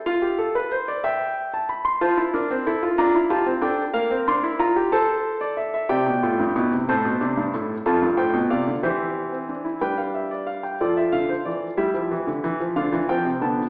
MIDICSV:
0, 0, Header, 1, 2, 480
1, 0, Start_track
1, 0, Key_signature, -1, "major"
1, 0, Tempo, 648649
1, 42, Time_signature, 6, 3, 24, 8
1, 3882, Tempo, 653595
1, 10083, End_track
2, 0, Start_track
2, 0, Title_t, "Grand piano"
2, 0, Program_c, 0, 0
2, 45, Note_on_c, 0, 77, 71
2, 46, Note_on_c, 0, 65, 83
2, 160, Note_off_c, 0, 65, 0
2, 162, Note_on_c, 0, 67, 69
2, 279, Note_off_c, 0, 67, 0
2, 285, Note_on_c, 0, 69, 76
2, 400, Note_off_c, 0, 69, 0
2, 409, Note_on_c, 0, 71, 79
2, 523, Note_off_c, 0, 71, 0
2, 530, Note_on_c, 0, 72, 72
2, 643, Note_off_c, 0, 72, 0
2, 652, Note_on_c, 0, 74, 75
2, 743, Note_off_c, 0, 77, 0
2, 764, Note_off_c, 0, 74, 0
2, 768, Note_on_c, 0, 76, 81
2, 771, Note_on_c, 0, 79, 70
2, 1117, Note_off_c, 0, 79, 0
2, 1136, Note_on_c, 0, 81, 67
2, 1246, Note_off_c, 0, 81, 0
2, 1251, Note_on_c, 0, 83, 62
2, 1363, Note_off_c, 0, 83, 0
2, 1366, Note_on_c, 0, 84, 69
2, 1463, Note_off_c, 0, 76, 0
2, 1480, Note_off_c, 0, 84, 0
2, 1489, Note_on_c, 0, 65, 88
2, 1490, Note_on_c, 0, 81, 74
2, 1491, Note_on_c, 0, 72, 69
2, 1602, Note_off_c, 0, 65, 0
2, 1608, Note_on_c, 0, 64, 78
2, 1637, Note_off_c, 0, 72, 0
2, 1721, Note_off_c, 0, 64, 0
2, 1729, Note_on_c, 0, 62, 82
2, 1729, Note_on_c, 0, 70, 64
2, 1842, Note_off_c, 0, 62, 0
2, 1855, Note_on_c, 0, 60, 82
2, 1875, Note_off_c, 0, 70, 0
2, 1965, Note_off_c, 0, 60, 0
2, 1972, Note_on_c, 0, 69, 70
2, 1973, Note_on_c, 0, 64, 88
2, 2084, Note_off_c, 0, 64, 0
2, 2092, Note_on_c, 0, 65, 77
2, 2117, Note_off_c, 0, 69, 0
2, 2183, Note_off_c, 0, 81, 0
2, 2197, Note_off_c, 0, 65, 0
2, 2206, Note_on_c, 0, 82, 75
2, 2207, Note_on_c, 0, 62, 86
2, 2208, Note_on_c, 0, 65, 78
2, 2320, Note_off_c, 0, 62, 0
2, 2330, Note_on_c, 0, 64, 81
2, 2353, Note_off_c, 0, 82, 0
2, 2354, Note_off_c, 0, 65, 0
2, 2441, Note_off_c, 0, 64, 0
2, 2444, Note_on_c, 0, 65, 90
2, 2444, Note_on_c, 0, 67, 73
2, 2444, Note_on_c, 0, 81, 69
2, 2558, Note_off_c, 0, 65, 0
2, 2563, Note_on_c, 0, 60, 82
2, 2591, Note_off_c, 0, 67, 0
2, 2591, Note_off_c, 0, 81, 0
2, 2675, Note_on_c, 0, 62, 81
2, 2677, Note_off_c, 0, 60, 0
2, 2678, Note_on_c, 0, 79, 67
2, 2679, Note_on_c, 0, 69, 67
2, 2825, Note_off_c, 0, 62, 0
2, 2827, Note_off_c, 0, 69, 0
2, 2827, Note_off_c, 0, 79, 0
2, 2912, Note_on_c, 0, 77, 77
2, 2914, Note_on_c, 0, 58, 83
2, 2914, Note_on_c, 0, 70, 79
2, 3032, Note_off_c, 0, 58, 0
2, 3037, Note_on_c, 0, 60, 78
2, 3063, Note_off_c, 0, 77, 0
2, 3154, Note_off_c, 0, 60, 0
2, 3165, Note_on_c, 0, 62, 83
2, 3165, Note_on_c, 0, 84, 73
2, 3278, Note_off_c, 0, 62, 0
2, 3280, Note_on_c, 0, 64, 79
2, 3312, Note_off_c, 0, 84, 0
2, 3396, Note_off_c, 0, 64, 0
2, 3400, Note_on_c, 0, 65, 87
2, 3400, Note_on_c, 0, 82, 73
2, 3516, Note_off_c, 0, 65, 0
2, 3524, Note_on_c, 0, 67, 79
2, 3549, Note_off_c, 0, 82, 0
2, 3616, Note_off_c, 0, 70, 0
2, 3639, Note_off_c, 0, 67, 0
2, 3641, Note_on_c, 0, 72, 76
2, 3641, Note_on_c, 0, 81, 77
2, 3643, Note_on_c, 0, 69, 87
2, 3990, Note_off_c, 0, 72, 0
2, 4001, Note_on_c, 0, 74, 75
2, 4117, Note_off_c, 0, 74, 0
2, 4120, Note_on_c, 0, 76, 67
2, 4234, Note_off_c, 0, 76, 0
2, 4245, Note_on_c, 0, 76, 71
2, 4340, Note_off_c, 0, 81, 0
2, 4341, Note_off_c, 0, 69, 0
2, 4357, Note_on_c, 0, 67, 76
2, 4357, Note_on_c, 0, 79, 72
2, 4359, Note_off_c, 0, 76, 0
2, 4359, Note_on_c, 0, 48, 89
2, 4361, Note_on_c, 0, 74, 74
2, 4476, Note_off_c, 0, 48, 0
2, 4481, Note_on_c, 0, 47, 70
2, 4507, Note_off_c, 0, 67, 0
2, 4597, Note_off_c, 0, 47, 0
2, 4605, Note_on_c, 0, 45, 79
2, 4607, Note_on_c, 0, 65, 66
2, 4719, Note_off_c, 0, 45, 0
2, 4724, Note_on_c, 0, 43, 76
2, 4754, Note_off_c, 0, 65, 0
2, 4839, Note_off_c, 0, 43, 0
2, 4844, Note_on_c, 0, 47, 89
2, 4844, Note_on_c, 0, 64, 69
2, 4959, Note_off_c, 0, 47, 0
2, 4965, Note_on_c, 0, 48, 76
2, 4992, Note_off_c, 0, 64, 0
2, 5058, Note_off_c, 0, 79, 0
2, 5059, Note_off_c, 0, 74, 0
2, 5080, Note_off_c, 0, 48, 0
2, 5087, Note_on_c, 0, 72, 72
2, 5087, Note_on_c, 0, 81, 73
2, 5088, Note_on_c, 0, 60, 75
2, 5091, Note_on_c, 0, 45, 86
2, 5202, Note_off_c, 0, 45, 0
2, 5208, Note_on_c, 0, 47, 81
2, 5235, Note_off_c, 0, 60, 0
2, 5320, Note_off_c, 0, 47, 0
2, 5324, Note_on_c, 0, 48, 84
2, 5325, Note_on_c, 0, 62, 74
2, 5438, Note_off_c, 0, 48, 0
2, 5443, Note_on_c, 0, 43, 77
2, 5472, Note_off_c, 0, 62, 0
2, 5557, Note_off_c, 0, 43, 0
2, 5565, Note_on_c, 0, 64, 61
2, 5569, Note_on_c, 0, 45, 75
2, 5711, Note_off_c, 0, 64, 0
2, 5714, Note_off_c, 0, 45, 0
2, 5780, Note_off_c, 0, 72, 0
2, 5780, Note_off_c, 0, 81, 0
2, 5800, Note_on_c, 0, 81, 73
2, 5802, Note_on_c, 0, 41, 86
2, 5802, Note_on_c, 0, 69, 72
2, 5803, Note_on_c, 0, 65, 78
2, 5916, Note_off_c, 0, 41, 0
2, 5920, Note_on_c, 0, 43, 69
2, 5948, Note_off_c, 0, 81, 0
2, 5949, Note_off_c, 0, 69, 0
2, 6032, Note_on_c, 0, 45, 75
2, 6032, Note_on_c, 0, 72, 65
2, 6032, Note_on_c, 0, 79, 69
2, 6035, Note_off_c, 0, 43, 0
2, 6151, Note_off_c, 0, 45, 0
2, 6151, Note_on_c, 0, 47, 83
2, 6183, Note_off_c, 0, 72, 0
2, 6183, Note_off_c, 0, 79, 0
2, 6271, Note_off_c, 0, 47, 0
2, 6274, Note_on_c, 0, 74, 68
2, 6274, Note_on_c, 0, 77, 66
2, 6275, Note_on_c, 0, 48, 81
2, 6393, Note_off_c, 0, 48, 0
2, 6399, Note_on_c, 0, 50, 77
2, 6424, Note_off_c, 0, 74, 0
2, 6424, Note_off_c, 0, 77, 0
2, 6499, Note_off_c, 0, 65, 0
2, 6514, Note_on_c, 0, 67, 70
2, 6515, Note_off_c, 0, 50, 0
2, 6515, Note_on_c, 0, 76, 62
2, 6516, Note_on_c, 0, 52, 81
2, 6517, Note_on_c, 0, 72, 71
2, 6867, Note_off_c, 0, 67, 0
2, 6876, Note_on_c, 0, 60, 57
2, 6995, Note_off_c, 0, 60, 0
2, 6998, Note_on_c, 0, 62, 56
2, 7113, Note_on_c, 0, 64, 61
2, 7117, Note_off_c, 0, 62, 0
2, 7219, Note_off_c, 0, 76, 0
2, 7220, Note_off_c, 0, 52, 0
2, 7220, Note_off_c, 0, 72, 0
2, 7234, Note_off_c, 0, 64, 0
2, 7236, Note_on_c, 0, 55, 64
2, 7236, Note_on_c, 0, 71, 58
2, 7237, Note_on_c, 0, 62, 59
2, 7237, Note_on_c, 0, 79, 69
2, 7356, Note_off_c, 0, 79, 0
2, 7356, Note_on_c, 0, 77, 59
2, 7476, Note_off_c, 0, 77, 0
2, 7478, Note_on_c, 0, 76, 63
2, 7598, Note_off_c, 0, 76, 0
2, 7601, Note_on_c, 0, 74, 62
2, 7715, Note_on_c, 0, 77, 62
2, 7720, Note_off_c, 0, 74, 0
2, 7837, Note_off_c, 0, 77, 0
2, 7839, Note_on_c, 0, 79, 59
2, 7942, Note_off_c, 0, 55, 0
2, 7942, Note_off_c, 0, 71, 0
2, 7943, Note_off_c, 0, 62, 0
2, 7960, Note_off_c, 0, 79, 0
2, 7966, Note_on_c, 0, 69, 65
2, 7967, Note_on_c, 0, 53, 62
2, 7967, Note_on_c, 0, 74, 67
2, 7968, Note_on_c, 0, 65, 67
2, 8084, Note_off_c, 0, 74, 0
2, 8086, Note_on_c, 0, 76, 66
2, 8116, Note_off_c, 0, 53, 0
2, 8198, Note_on_c, 0, 77, 72
2, 8199, Note_on_c, 0, 50, 65
2, 8203, Note_off_c, 0, 76, 0
2, 8319, Note_off_c, 0, 77, 0
2, 8322, Note_on_c, 0, 72, 59
2, 8350, Note_off_c, 0, 50, 0
2, 8440, Note_off_c, 0, 72, 0
2, 8440, Note_on_c, 0, 74, 62
2, 8444, Note_on_c, 0, 52, 61
2, 8590, Note_off_c, 0, 74, 0
2, 8593, Note_off_c, 0, 52, 0
2, 8663, Note_off_c, 0, 69, 0
2, 8665, Note_off_c, 0, 65, 0
2, 8676, Note_on_c, 0, 67, 69
2, 8677, Note_on_c, 0, 64, 68
2, 8677, Note_on_c, 0, 76, 67
2, 8679, Note_on_c, 0, 55, 81
2, 8798, Note_off_c, 0, 55, 0
2, 8798, Note_on_c, 0, 53, 69
2, 8918, Note_off_c, 0, 53, 0
2, 8926, Note_on_c, 0, 52, 73
2, 9040, Note_on_c, 0, 50, 80
2, 9042, Note_off_c, 0, 52, 0
2, 9160, Note_off_c, 0, 50, 0
2, 9165, Note_on_c, 0, 52, 81
2, 9282, Note_off_c, 0, 52, 0
2, 9284, Note_on_c, 0, 53, 73
2, 9380, Note_off_c, 0, 64, 0
2, 9380, Note_off_c, 0, 67, 0
2, 9380, Note_off_c, 0, 76, 0
2, 9400, Note_on_c, 0, 62, 66
2, 9401, Note_on_c, 0, 65, 64
2, 9401, Note_on_c, 0, 77, 71
2, 9402, Note_off_c, 0, 53, 0
2, 9403, Note_on_c, 0, 50, 78
2, 9521, Note_off_c, 0, 50, 0
2, 9521, Note_on_c, 0, 52, 79
2, 9551, Note_off_c, 0, 62, 0
2, 9551, Note_off_c, 0, 77, 0
2, 9640, Note_off_c, 0, 52, 0
2, 9642, Note_on_c, 0, 60, 73
2, 9644, Note_on_c, 0, 53, 81
2, 9644, Note_on_c, 0, 79, 75
2, 9759, Note_on_c, 0, 48, 68
2, 9760, Note_off_c, 0, 53, 0
2, 9791, Note_off_c, 0, 60, 0
2, 9792, Note_off_c, 0, 79, 0
2, 9877, Note_off_c, 0, 48, 0
2, 9880, Note_on_c, 0, 50, 76
2, 9880, Note_on_c, 0, 59, 64
2, 9884, Note_on_c, 0, 81, 66
2, 10028, Note_off_c, 0, 59, 0
2, 10029, Note_off_c, 0, 50, 0
2, 10031, Note_off_c, 0, 81, 0
2, 10083, Note_off_c, 0, 65, 0
2, 10083, End_track
0, 0, End_of_file